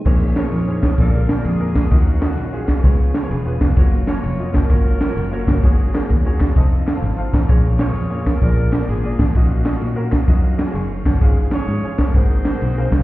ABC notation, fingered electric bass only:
X:1
M:4/4
L:1/8
Q:"Swing" 1/4=129
K:Bbm
V:1 name="Fingered electric bass" clef=bass
B,,,2 F,,2 B,,,2 F,,2 | E,,2 B,,,2 D,,2 _F,,, =F,,, | G,,,2 F,,, G,,, A,,,2 G,,, =G,,, | A,,,2 E,,2 F,,,2 A,,, =A,,, |
B,,,2 F,,2 B,,,2 A,,, =A,,, | B,,,2 B,,2 G,,2 G,,, =G,,, | A,,,2 A,,2 A,,,2 _C,, =C,, |]